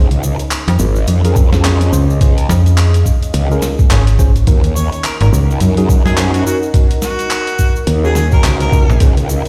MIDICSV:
0, 0, Header, 1, 7, 480
1, 0, Start_track
1, 0, Tempo, 566038
1, 1877, Time_signature, 4, 2, 24, 8
1, 8044, End_track
2, 0, Start_track
2, 0, Title_t, "Harmonica"
2, 0, Program_c, 0, 22
2, 4037, Note_on_c, 0, 73, 89
2, 4127, Note_off_c, 0, 73, 0
2, 4179, Note_on_c, 0, 73, 76
2, 4241, Note_off_c, 0, 73, 0
2, 4283, Note_on_c, 0, 70, 89
2, 4371, Note_off_c, 0, 70, 0
2, 4421, Note_on_c, 0, 70, 79
2, 4483, Note_off_c, 0, 70, 0
2, 5134, Note_on_c, 0, 68, 93
2, 5199, Note_off_c, 0, 68, 0
2, 5233, Note_on_c, 0, 68, 75
2, 5326, Note_off_c, 0, 68, 0
2, 5374, Note_on_c, 0, 66, 86
2, 5439, Note_off_c, 0, 66, 0
2, 5479, Note_on_c, 0, 66, 81
2, 5569, Note_off_c, 0, 66, 0
2, 5962, Note_on_c, 0, 66, 101
2, 6640, Note_off_c, 0, 66, 0
2, 6823, Note_on_c, 0, 68, 88
2, 6883, Note_off_c, 0, 68, 0
2, 6921, Note_on_c, 0, 68, 82
2, 7009, Note_off_c, 0, 68, 0
2, 7064, Note_on_c, 0, 70, 95
2, 7124, Note_off_c, 0, 70, 0
2, 7163, Note_on_c, 0, 70, 78
2, 7250, Note_off_c, 0, 70, 0
2, 7304, Note_on_c, 0, 70, 92
2, 7696, Note_off_c, 0, 70, 0
2, 8044, End_track
3, 0, Start_track
3, 0, Title_t, "Ambient pad"
3, 0, Program_c, 1, 92
3, 0, Note_on_c, 1, 61, 93
3, 0, Note_on_c, 1, 63, 93
3, 0, Note_on_c, 1, 70, 81
3, 206, Note_on_c, 1, 68, 92
3, 758, Note_on_c, 1, 75, 96
3, 1071, Note_off_c, 1, 70, 0
3, 1438, Note_on_c, 1, 77, 83
3, 1508, Note_off_c, 1, 63, 0
3, 3796, Note_off_c, 1, 77, 0
3, 3796, Note_on_c, 1, 63, 90
3, 3967, Note_on_c, 1, 70, 78
3, 4009, Note_on_c, 1, 78, 92
3, 4405, Note_off_c, 1, 75, 0
3, 4445, Note_off_c, 1, 68, 0
3, 5350, Note_off_c, 1, 61, 0
3, 7630, Note_on_c, 1, 61, 82
3, 7641, Note_off_c, 1, 78, 0
3, 7805, Note_on_c, 1, 68, 82
3, 8044, Note_off_c, 1, 61, 0
3, 8044, Note_off_c, 1, 63, 0
3, 8044, Note_off_c, 1, 68, 0
3, 8044, Note_off_c, 1, 70, 0
3, 8044, End_track
4, 0, Start_track
4, 0, Title_t, "Tine electric piano"
4, 0, Program_c, 2, 4
4, 1056, Note_on_c, 2, 65, 88
4, 1056, Note_on_c, 2, 68, 87
4, 1057, Note_on_c, 2, 61, 94
4, 1057, Note_on_c, 2, 70, 102
4, 1169, Note_off_c, 2, 61, 0
4, 1169, Note_off_c, 2, 65, 0
4, 1169, Note_off_c, 2, 68, 0
4, 1169, Note_off_c, 2, 70, 0
4, 1298, Note_on_c, 2, 61, 82
4, 1298, Note_on_c, 2, 65, 71
4, 1298, Note_on_c, 2, 68, 74
4, 1298, Note_on_c, 2, 72, 86
4, 1372, Note_off_c, 2, 61, 0
4, 1372, Note_off_c, 2, 65, 0
4, 1372, Note_off_c, 2, 68, 0
4, 1373, Note_off_c, 2, 72, 0
4, 1394, Note_on_c, 2, 61, 88
4, 1395, Note_on_c, 2, 65, 79
4, 1395, Note_on_c, 2, 68, 78
4, 1395, Note_on_c, 2, 73, 92
4, 1612, Note_off_c, 2, 61, 0
4, 1612, Note_off_c, 2, 65, 0
4, 1612, Note_off_c, 2, 68, 0
4, 1612, Note_off_c, 2, 73, 0
4, 1634, Note_on_c, 2, 61, 95
4, 1634, Note_on_c, 2, 65, 84
4, 1634, Note_on_c, 2, 68, 82
4, 1634, Note_on_c, 2, 72, 103
4, 1732, Note_off_c, 2, 72, 0
4, 1733, Note_off_c, 2, 61, 0
4, 1733, Note_off_c, 2, 65, 0
4, 1733, Note_off_c, 2, 68, 0
4, 1872, Note_on_c, 2, 68, 75
4, 1873, Note_on_c, 2, 61, 83
4, 1873, Note_on_c, 2, 72, 97
4, 1874, Note_on_c, 2, 65, 81
4, 1972, Note_off_c, 2, 61, 0
4, 1972, Note_off_c, 2, 65, 0
4, 1972, Note_off_c, 2, 68, 0
4, 1972, Note_off_c, 2, 72, 0
4, 2979, Note_on_c, 2, 65, 82
4, 2980, Note_on_c, 2, 61, 93
4, 2980, Note_on_c, 2, 70, 100
4, 2981, Note_on_c, 2, 68, 83
4, 3090, Note_off_c, 2, 65, 0
4, 3091, Note_off_c, 2, 61, 0
4, 3091, Note_off_c, 2, 68, 0
4, 3091, Note_off_c, 2, 70, 0
4, 3317, Note_on_c, 2, 61, 101
4, 3317, Note_on_c, 2, 65, 94
4, 3317, Note_on_c, 2, 68, 92
4, 3317, Note_on_c, 2, 73, 112
4, 3414, Note_off_c, 2, 61, 0
4, 3414, Note_off_c, 2, 65, 0
4, 3414, Note_off_c, 2, 68, 0
4, 3414, Note_off_c, 2, 73, 0
4, 3556, Note_on_c, 2, 61, 99
4, 3556, Note_on_c, 2, 68, 95
4, 3556, Note_on_c, 2, 72, 110
4, 3557, Note_on_c, 2, 65, 90
4, 3654, Note_off_c, 2, 61, 0
4, 3654, Note_off_c, 2, 65, 0
4, 3654, Note_off_c, 2, 68, 0
4, 3654, Note_off_c, 2, 72, 0
4, 3794, Note_on_c, 2, 63, 76
4, 3795, Note_on_c, 2, 61, 82
4, 3795, Note_on_c, 2, 66, 78
4, 3795, Note_on_c, 2, 70, 91
4, 3892, Note_off_c, 2, 63, 0
4, 3893, Note_off_c, 2, 61, 0
4, 3893, Note_off_c, 2, 66, 0
4, 3893, Note_off_c, 2, 70, 0
4, 4898, Note_on_c, 2, 68, 108
4, 4899, Note_on_c, 2, 61, 98
4, 4899, Note_on_c, 2, 63, 88
4, 4899, Note_on_c, 2, 66, 89
4, 5010, Note_off_c, 2, 61, 0
4, 5010, Note_off_c, 2, 63, 0
4, 5010, Note_off_c, 2, 66, 0
4, 5010, Note_off_c, 2, 68, 0
4, 5136, Note_on_c, 2, 66, 72
4, 5137, Note_on_c, 2, 63, 70
4, 5137, Note_on_c, 2, 70, 87
4, 5138, Note_on_c, 2, 61, 80
4, 5212, Note_off_c, 2, 63, 0
4, 5212, Note_off_c, 2, 66, 0
4, 5212, Note_off_c, 2, 70, 0
4, 5213, Note_off_c, 2, 61, 0
4, 5237, Note_on_c, 2, 61, 83
4, 5237, Note_on_c, 2, 66, 79
4, 5237, Note_on_c, 2, 72, 94
4, 5238, Note_on_c, 2, 63, 77
4, 5453, Note_off_c, 2, 61, 0
4, 5453, Note_off_c, 2, 66, 0
4, 5453, Note_off_c, 2, 72, 0
4, 5454, Note_off_c, 2, 63, 0
4, 5477, Note_on_c, 2, 61, 92
4, 5478, Note_on_c, 2, 66, 84
4, 5478, Note_on_c, 2, 70, 103
4, 5479, Note_on_c, 2, 63, 83
4, 5574, Note_off_c, 2, 61, 0
4, 5574, Note_off_c, 2, 66, 0
4, 5575, Note_off_c, 2, 63, 0
4, 5575, Note_off_c, 2, 70, 0
4, 5717, Note_on_c, 2, 61, 85
4, 5717, Note_on_c, 2, 70, 93
4, 5718, Note_on_c, 2, 63, 78
4, 5718, Note_on_c, 2, 66, 78
4, 5814, Note_off_c, 2, 61, 0
4, 5814, Note_off_c, 2, 70, 0
4, 5815, Note_off_c, 2, 63, 0
4, 5815, Note_off_c, 2, 66, 0
4, 6819, Note_on_c, 2, 61, 95
4, 6819, Note_on_c, 2, 68, 103
4, 6820, Note_on_c, 2, 63, 86
4, 6820, Note_on_c, 2, 66, 82
4, 6930, Note_off_c, 2, 68, 0
4, 6931, Note_off_c, 2, 61, 0
4, 6931, Note_off_c, 2, 63, 0
4, 6931, Note_off_c, 2, 66, 0
4, 7060, Note_on_c, 2, 63, 72
4, 7060, Note_on_c, 2, 70, 88
4, 7061, Note_on_c, 2, 61, 79
4, 7061, Note_on_c, 2, 66, 72
4, 7134, Note_off_c, 2, 61, 0
4, 7134, Note_off_c, 2, 63, 0
4, 7134, Note_off_c, 2, 66, 0
4, 7134, Note_off_c, 2, 70, 0
4, 7156, Note_on_c, 2, 61, 89
4, 7156, Note_on_c, 2, 66, 81
4, 7156, Note_on_c, 2, 72, 99
4, 7157, Note_on_c, 2, 63, 83
4, 7373, Note_off_c, 2, 61, 0
4, 7373, Note_off_c, 2, 63, 0
4, 7373, Note_off_c, 2, 66, 0
4, 7373, Note_off_c, 2, 72, 0
4, 7398, Note_on_c, 2, 63, 88
4, 7398, Note_on_c, 2, 66, 85
4, 7398, Note_on_c, 2, 70, 105
4, 7399, Note_on_c, 2, 61, 97
4, 7494, Note_off_c, 2, 63, 0
4, 7495, Note_off_c, 2, 61, 0
4, 7495, Note_off_c, 2, 66, 0
4, 7495, Note_off_c, 2, 70, 0
4, 7640, Note_on_c, 2, 61, 80
4, 7640, Note_on_c, 2, 65, 78
4, 7640, Note_on_c, 2, 68, 78
4, 7640, Note_on_c, 2, 72, 89
4, 7735, Note_off_c, 2, 61, 0
4, 7735, Note_off_c, 2, 72, 0
4, 7736, Note_off_c, 2, 65, 0
4, 7736, Note_off_c, 2, 68, 0
4, 8044, End_track
5, 0, Start_track
5, 0, Title_t, "Wobble bass"
5, 0, Program_c, 3, 39
5, 0, Note_on_c, 3, 37, 97
5, 315, Note_off_c, 3, 37, 0
5, 674, Note_on_c, 3, 32, 97
5, 899, Note_off_c, 3, 32, 0
5, 913, Note_on_c, 3, 41, 102
5, 1619, Note_off_c, 3, 41, 0
5, 1631, Note_on_c, 3, 37, 92
5, 2098, Note_off_c, 3, 37, 0
5, 2831, Note_on_c, 3, 37, 97
5, 3058, Note_off_c, 3, 37, 0
5, 3795, Note_on_c, 3, 39, 96
5, 4155, Note_off_c, 3, 39, 0
5, 4516, Note_on_c, 3, 37, 99
5, 4740, Note_off_c, 3, 37, 0
5, 4754, Note_on_c, 3, 42, 102
5, 5460, Note_off_c, 3, 42, 0
5, 6674, Note_on_c, 3, 39, 101
5, 7139, Note_off_c, 3, 39, 0
5, 7157, Note_on_c, 3, 37, 96
5, 7516, Note_off_c, 3, 37, 0
5, 7636, Note_on_c, 3, 37, 99
5, 7996, Note_off_c, 3, 37, 0
5, 8044, End_track
6, 0, Start_track
6, 0, Title_t, "FM bass"
6, 0, Program_c, 4, 39
6, 575, Note_on_c, 4, 41, 102
6, 659, Note_off_c, 4, 41, 0
6, 2113, Note_on_c, 4, 41, 102
6, 2579, Note_off_c, 4, 41, 0
6, 3312, Note_on_c, 4, 32, 98
6, 3778, Note_off_c, 4, 32, 0
6, 4417, Note_on_c, 4, 32, 101
6, 4500, Note_off_c, 4, 32, 0
6, 7541, Note_on_c, 4, 34, 103
6, 7622, Note_off_c, 4, 34, 0
6, 8044, End_track
7, 0, Start_track
7, 0, Title_t, "Drums"
7, 94, Note_on_c, 9, 42, 54
7, 94, Note_on_c, 9, 69, 25
7, 179, Note_off_c, 9, 42, 0
7, 179, Note_off_c, 9, 69, 0
7, 198, Note_on_c, 9, 69, 111
7, 283, Note_off_c, 9, 69, 0
7, 332, Note_on_c, 9, 69, 41
7, 334, Note_on_c, 9, 42, 39
7, 417, Note_off_c, 9, 69, 0
7, 419, Note_off_c, 9, 42, 0
7, 432, Note_on_c, 9, 39, 126
7, 432, Note_on_c, 9, 42, 82
7, 435, Note_on_c, 9, 69, 59
7, 517, Note_off_c, 9, 39, 0
7, 517, Note_off_c, 9, 42, 0
7, 519, Note_off_c, 9, 69, 0
7, 576, Note_on_c, 9, 42, 55
7, 580, Note_on_c, 9, 69, 30
7, 661, Note_off_c, 9, 42, 0
7, 664, Note_off_c, 9, 69, 0
7, 669, Note_on_c, 9, 69, 90
7, 754, Note_off_c, 9, 69, 0
7, 811, Note_on_c, 9, 69, 42
7, 896, Note_off_c, 9, 69, 0
7, 909, Note_on_c, 9, 69, 58
7, 913, Note_on_c, 9, 42, 86
7, 994, Note_off_c, 9, 69, 0
7, 998, Note_off_c, 9, 42, 0
7, 1057, Note_on_c, 9, 42, 57
7, 1060, Note_on_c, 9, 69, 27
7, 1142, Note_off_c, 9, 42, 0
7, 1144, Note_off_c, 9, 69, 0
7, 1154, Note_on_c, 9, 36, 115
7, 1154, Note_on_c, 9, 69, 106
7, 1239, Note_off_c, 9, 36, 0
7, 1239, Note_off_c, 9, 69, 0
7, 1294, Note_on_c, 9, 38, 53
7, 1299, Note_on_c, 9, 69, 44
7, 1378, Note_off_c, 9, 38, 0
7, 1384, Note_off_c, 9, 69, 0
7, 1394, Note_on_c, 9, 39, 126
7, 1394, Note_on_c, 9, 42, 83
7, 1397, Note_on_c, 9, 69, 55
7, 1479, Note_off_c, 9, 39, 0
7, 1479, Note_off_c, 9, 42, 0
7, 1482, Note_off_c, 9, 69, 0
7, 1534, Note_on_c, 9, 42, 58
7, 1540, Note_on_c, 9, 69, 25
7, 1619, Note_off_c, 9, 42, 0
7, 1625, Note_off_c, 9, 69, 0
7, 1637, Note_on_c, 9, 69, 100
7, 1722, Note_off_c, 9, 69, 0
7, 1782, Note_on_c, 9, 69, 46
7, 1866, Note_off_c, 9, 69, 0
7, 1874, Note_on_c, 9, 36, 124
7, 1874, Note_on_c, 9, 42, 79
7, 1878, Note_on_c, 9, 69, 60
7, 1958, Note_off_c, 9, 36, 0
7, 1959, Note_off_c, 9, 42, 0
7, 1963, Note_off_c, 9, 69, 0
7, 2014, Note_on_c, 9, 69, 27
7, 2017, Note_on_c, 9, 42, 52
7, 2099, Note_off_c, 9, 69, 0
7, 2101, Note_off_c, 9, 42, 0
7, 2114, Note_on_c, 9, 38, 35
7, 2123, Note_on_c, 9, 69, 102
7, 2199, Note_off_c, 9, 38, 0
7, 2208, Note_off_c, 9, 69, 0
7, 2257, Note_on_c, 9, 42, 37
7, 2264, Note_on_c, 9, 69, 42
7, 2342, Note_off_c, 9, 42, 0
7, 2349, Note_off_c, 9, 69, 0
7, 2353, Note_on_c, 9, 39, 125
7, 2353, Note_on_c, 9, 42, 80
7, 2353, Note_on_c, 9, 69, 59
7, 2438, Note_off_c, 9, 39, 0
7, 2438, Note_off_c, 9, 42, 0
7, 2438, Note_off_c, 9, 69, 0
7, 2495, Note_on_c, 9, 42, 55
7, 2503, Note_on_c, 9, 69, 28
7, 2580, Note_off_c, 9, 42, 0
7, 2587, Note_off_c, 9, 69, 0
7, 2593, Note_on_c, 9, 36, 63
7, 2596, Note_on_c, 9, 69, 106
7, 2678, Note_off_c, 9, 36, 0
7, 2681, Note_off_c, 9, 69, 0
7, 2735, Note_on_c, 9, 42, 37
7, 2738, Note_on_c, 9, 69, 41
7, 2820, Note_off_c, 9, 42, 0
7, 2823, Note_off_c, 9, 69, 0
7, 2829, Note_on_c, 9, 69, 54
7, 2832, Note_on_c, 9, 42, 83
7, 2914, Note_off_c, 9, 69, 0
7, 2917, Note_off_c, 9, 42, 0
7, 2980, Note_on_c, 9, 69, 29
7, 3064, Note_off_c, 9, 69, 0
7, 3070, Note_on_c, 9, 69, 96
7, 3072, Note_on_c, 9, 38, 53
7, 3155, Note_off_c, 9, 69, 0
7, 3157, Note_off_c, 9, 38, 0
7, 3215, Note_on_c, 9, 69, 43
7, 3216, Note_on_c, 9, 36, 111
7, 3299, Note_off_c, 9, 69, 0
7, 3300, Note_off_c, 9, 36, 0
7, 3311, Note_on_c, 9, 39, 127
7, 3311, Note_on_c, 9, 42, 82
7, 3316, Note_on_c, 9, 69, 55
7, 3396, Note_off_c, 9, 39, 0
7, 3396, Note_off_c, 9, 42, 0
7, 3400, Note_off_c, 9, 69, 0
7, 3453, Note_on_c, 9, 42, 57
7, 3458, Note_on_c, 9, 69, 28
7, 3538, Note_off_c, 9, 42, 0
7, 3543, Note_off_c, 9, 69, 0
7, 3554, Note_on_c, 9, 36, 112
7, 3556, Note_on_c, 9, 69, 97
7, 3638, Note_off_c, 9, 36, 0
7, 3641, Note_off_c, 9, 69, 0
7, 3695, Note_on_c, 9, 42, 38
7, 3698, Note_on_c, 9, 69, 38
7, 3779, Note_off_c, 9, 42, 0
7, 3782, Note_off_c, 9, 69, 0
7, 3791, Note_on_c, 9, 42, 77
7, 3794, Note_on_c, 9, 36, 115
7, 3797, Note_on_c, 9, 69, 52
7, 3876, Note_off_c, 9, 42, 0
7, 3878, Note_off_c, 9, 36, 0
7, 3882, Note_off_c, 9, 69, 0
7, 3934, Note_on_c, 9, 42, 52
7, 3941, Note_on_c, 9, 69, 24
7, 4019, Note_off_c, 9, 42, 0
7, 4026, Note_off_c, 9, 69, 0
7, 4039, Note_on_c, 9, 69, 109
7, 4124, Note_off_c, 9, 69, 0
7, 4175, Note_on_c, 9, 42, 36
7, 4183, Note_on_c, 9, 69, 38
7, 4260, Note_off_c, 9, 42, 0
7, 4268, Note_off_c, 9, 69, 0
7, 4273, Note_on_c, 9, 39, 123
7, 4273, Note_on_c, 9, 42, 78
7, 4286, Note_on_c, 9, 69, 52
7, 4358, Note_off_c, 9, 39, 0
7, 4358, Note_off_c, 9, 42, 0
7, 4371, Note_off_c, 9, 69, 0
7, 4414, Note_on_c, 9, 42, 52
7, 4434, Note_on_c, 9, 69, 26
7, 4499, Note_off_c, 9, 42, 0
7, 4518, Note_off_c, 9, 69, 0
7, 4524, Note_on_c, 9, 69, 95
7, 4609, Note_off_c, 9, 69, 0
7, 4670, Note_on_c, 9, 69, 43
7, 4752, Note_on_c, 9, 42, 81
7, 4755, Note_off_c, 9, 69, 0
7, 4761, Note_on_c, 9, 69, 54
7, 4837, Note_off_c, 9, 42, 0
7, 4846, Note_off_c, 9, 69, 0
7, 4895, Note_on_c, 9, 42, 53
7, 4906, Note_on_c, 9, 69, 26
7, 4980, Note_off_c, 9, 42, 0
7, 4991, Note_off_c, 9, 69, 0
7, 4996, Note_on_c, 9, 36, 107
7, 5001, Note_on_c, 9, 69, 97
7, 5081, Note_off_c, 9, 36, 0
7, 5086, Note_off_c, 9, 69, 0
7, 5136, Note_on_c, 9, 38, 53
7, 5146, Note_on_c, 9, 69, 41
7, 5220, Note_off_c, 9, 38, 0
7, 5230, Note_off_c, 9, 69, 0
7, 5234, Note_on_c, 9, 39, 119
7, 5234, Note_on_c, 9, 42, 81
7, 5240, Note_on_c, 9, 69, 56
7, 5319, Note_off_c, 9, 39, 0
7, 5319, Note_off_c, 9, 42, 0
7, 5325, Note_off_c, 9, 69, 0
7, 5377, Note_on_c, 9, 42, 53
7, 5384, Note_on_c, 9, 69, 27
7, 5462, Note_off_c, 9, 42, 0
7, 5469, Note_off_c, 9, 69, 0
7, 5485, Note_on_c, 9, 69, 98
7, 5570, Note_off_c, 9, 69, 0
7, 5621, Note_on_c, 9, 69, 40
7, 5706, Note_off_c, 9, 69, 0
7, 5715, Note_on_c, 9, 42, 75
7, 5717, Note_on_c, 9, 36, 120
7, 5723, Note_on_c, 9, 69, 50
7, 5800, Note_off_c, 9, 42, 0
7, 5801, Note_off_c, 9, 36, 0
7, 5808, Note_off_c, 9, 69, 0
7, 5857, Note_on_c, 9, 42, 53
7, 5858, Note_on_c, 9, 69, 25
7, 5942, Note_off_c, 9, 42, 0
7, 5943, Note_off_c, 9, 69, 0
7, 5953, Note_on_c, 9, 38, 37
7, 5953, Note_on_c, 9, 69, 99
7, 6038, Note_off_c, 9, 38, 0
7, 6038, Note_off_c, 9, 69, 0
7, 6096, Note_on_c, 9, 42, 36
7, 6104, Note_on_c, 9, 69, 40
7, 6181, Note_off_c, 9, 42, 0
7, 6189, Note_off_c, 9, 69, 0
7, 6194, Note_on_c, 9, 39, 113
7, 6194, Note_on_c, 9, 42, 75
7, 6204, Note_on_c, 9, 69, 54
7, 6278, Note_off_c, 9, 39, 0
7, 6278, Note_off_c, 9, 42, 0
7, 6289, Note_off_c, 9, 69, 0
7, 6337, Note_on_c, 9, 42, 52
7, 6343, Note_on_c, 9, 69, 27
7, 6422, Note_off_c, 9, 42, 0
7, 6427, Note_off_c, 9, 69, 0
7, 6434, Note_on_c, 9, 69, 91
7, 6438, Note_on_c, 9, 36, 61
7, 6519, Note_off_c, 9, 69, 0
7, 6522, Note_off_c, 9, 36, 0
7, 6579, Note_on_c, 9, 69, 39
7, 6663, Note_off_c, 9, 69, 0
7, 6674, Note_on_c, 9, 42, 79
7, 6675, Note_on_c, 9, 69, 47
7, 6759, Note_off_c, 9, 42, 0
7, 6759, Note_off_c, 9, 69, 0
7, 6824, Note_on_c, 9, 69, 28
7, 6908, Note_off_c, 9, 69, 0
7, 6913, Note_on_c, 9, 38, 54
7, 6917, Note_on_c, 9, 69, 88
7, 6998, Note_off_c, 9, 38, 0
7, 7001, Note_off_c, 9, 69, 0
7, 7053, Note_on_c, 9, 69, 40
7, 7060, Note_on_c, 9, 36, 103
7, 7138, Note_off_c, 9, 69, 0
7, 7145, Note_off_c, 9, 36, 0
7, 7155, Note_on_c, 9, 39, 123
7, 7155, Note_on_c, 9, 42, 79
7, 7166, Note_on_c, 9, 69, 55
7, 7240, Note_off_c, 9, 39, 0
7, 7240, Note_off_c, 9, 42, 0
7, 7251, Note_off_c, 9, 69, 0
7, 7297, Note_on_c, 9, 42, 55
7, 7302, Note_on_c, 9, 69, 27
7, 7381, Note_off_c, 9, 42, 0
7, 7386, Note_off_c, 9, 69, 0
7, 7397, Note_on_c, 9, 36, 105
7, 7401, Note_on_c, 9, 69, 82
7, 7482, Note_off_c, 9, 36, 0
7, 7486, Note_off_c, 9, 69, 0
7, 7547, Note_on_c, 9, 69, 38
7, 7632, Note_off_c, 9, 69, 0
7, 7634, Note_on_c, 9, 42, 79
7, 7637, Note_on_c, 9, 36, 112
7, 7645, Note_on_c, 9, 69, 55
7, 7719, Note_off_c, 9, 42, 0
7, 7722, Note_off_c, 9, 36, 0
7, 7730, Note_off_c, 9, 69, 0
7, 7779, Note_on_c, 9, 42, 51
7, 7785, Note_on_c, 9, 69, 26
7, 7864, Note_off_c, 9, 42, 0
7, 7870, Note_off_c, 9, 69, 0
7, 7881, Note_on_c, 9, 69, 91
7, 7965, Note_off_c, 9, 69, 0
7, 8017, Note_on_c, 9, 42, 38
7, 8044, Note_off_c, 9, 42, 0
7, 8044, End_track
0, 0, End_of_file